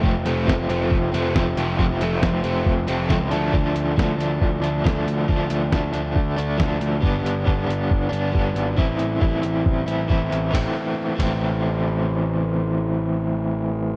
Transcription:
<<
  \new Staff \with { instrumentName = "Overdriven electric guitar" } { \time 4/4 \key a \minor \tempo 4 = 137 <f a c'>4 <f a c'>8 <a c'>4 <a c'>8 <f a c'>4 | <f a c'>4 <f a c'>8 <a c'>4 <a c'>8 <f a c'>8 <f a d'>8 | <f a d'>4 <f a d'>8 <a d'>4 <a d'>8 <f a d'>4 | <f a d'>4 <f a d'>8 <a d'>4 <a d'>8 <f a d'>4 |
<g b d'>4 <g b d'>8 <b d'>4 <b d'>8 <g b d'>4 | <e c' e'>4 <e c' e'>8 <c' e'>4 <c' e'>8 <e c' e'>4 | <e a c'>8 r4 <e a c'>2~ <e a c'>8~ | <e a c'>1 | }
  \new Staff \with { instrumentName = "Overdriven electric guitar" } { \time 4/4 \key a \minor <f a c'>8 <f a c'>8 r8 <f a c'>8 r8 <f a c'>8 r8 <f a c'>8 | r8 <f a c'>8 r8 <f a c'>8 r8 <f a c'>8 r8 <f a d'>8 | r1 | r1 |
r1 | r1 | r1 | r1 | }
  \new Staff \with { instrumentName = "Picked electric bass" } { \clef bass \time 4/4 \key a \minor f,,8 f,,8 f,,8 f,,8 f,,8 f,,8 f,,8 f,,8 | f,,8 f,,8 f,,8 f,,8 f,,8 f,,8 cis,8 d,8 | d,8 d,8 d,8 d,8 d,8 d,8 d,8 d,8 | d,8 d,8 d,8 d,8 d,8 d,8 d,8 d,8 |
g,,8 g,,8 g,,8 g,,8 g,,8 g,,8 g,,8 gis,,8 | a,,8 a,,8 a,,8 a,,8 a,,8 a,,8 a,,8 a,,8 | a,,8 r4 a,,2~ a,,8~ | a,,1 | }
  \new DrumStaff \with { instrumentName = "Drums" } \drummode { \time 4/4 bd8 hh8 <bd sn>8 hh8 bd8 hh8 <bd sn>8 hh8 | bd8 hh8 <bd sn>8 hh8 bd8 hh8 <bd sn>8 hh8 | bd8 hh8 <bd sn>8 hh8 bd8 hh8 <bd sn>8 hh8 | bd8 hh8 <bd sn>8 hh8 bd8 hh8 <bd sn>8 hh8 |
bd8 hh8 bd8 hh8 bd8 hh8 bd8 hh8 | bd8 hh8 bd8 hh8 bd8 hh8 bd8 hh8 | <bd cymr>4 r8 <bd cymr>8 r4 r4 | r4 r4 r4 r4 | }
>>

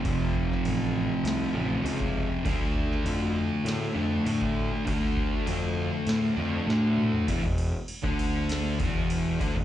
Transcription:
<<
  \new Staff \with { instrumentName = "Distorted electric guitar" } { \clef bass \time 4/4 \key d \dorian \tempo 4 = 100 <f, c f>2~ <f, c f>8 <f, c f>8 <f, c f>4 | <d a d'>2~ <d a d'>8 <d a d'>8 <d a d'>4 | <d a d'>2~ <d a d'>8 <d a d'>8 <d a d'>4 | <e, e>16 e,8 r8 <d d'>4~ <d d'>16 <e, e>4 <d d'>16 e,16 | }
  \new Staff \with { instrumentName = "Picked electric bass" } { \clef bass \time 4/4 \key d \dorian f,,4 a,,4 c,8 a,,8 cis,4 | d,4 f,4 a,8 f,8 a,4 | d,4 f,4 a,8 f,8 a,4 | e,,16 e,,8 r8 d,4~ d,16 e,,4 d,16 e,,16 | }
  \new DrumStaff \with { instrumentName = "Drums" } \drummode { \time 4/4 <cymc bd>8 bd16 sn16 cymc4 <cymc sn>4 cymc16 bd8. | <cymc bd>8 bd16 sn16 cymc4 <cymc sn>4 cymc16 bd8. | <cymc bd>8 bd8 cymc4 <cymc sn>4 sn8 toml16 tomfh16 | <cymc bd>8 cymc8 cymc16 bd16 cymc8 <cymc sn>8 <cymc bd>8 cymc8 <cymc bd>8 | }
>>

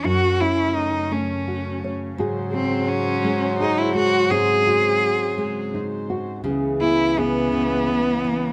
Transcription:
<<
  \new Staff \with { instrumentName = "Cello" } { \time 6/8 \key gis \phrygian \tempo 4. = 56 fis'8 e'8 dis'8 cis'4 r8 | r8 bis8 cis'4 dis'16 e'16 fis'8 | gis'2 r4 | \key cis \minor r8 e'8 b2 | }
  \new Staff \with { instrumentName = "Nylon-string guitar" } { \time 6/8 \key gis \phrygian << { cis'8 cis'4. fis'8 cis''8 | <fis' gis'>8 gis'4. gis'8 gis8 | <bis dis' fis'>8 fis'4. dis'8 fis'8 | \key cis \minor gis'8 b8 gis'2 | } \\ { fis,4. a4. | gis,4. gis4 r8 | gis,4. gis4. | cis4. cis8 r8 e8 | } >> }
  \new Staff \with { instrumentName = "French horn" } { \clef bass \time 6/8 \key gis \phrygian r2. | fis2.~ | fis2~ fis8 r8 | \key cis \minor e2. | }
  \new Staff \with { instrumentName = "String section" } { \clef bass \time 6/8 \key gis \phrygian << { <fis, a cis'>2. | <gis, fis bis'>2.~ | <gis, fis bis'>2. | \key cis \minor <cis, e b>2. | } \\ { cis2.~ | cis2.~ | cis2. | cis2. | } >> }
>>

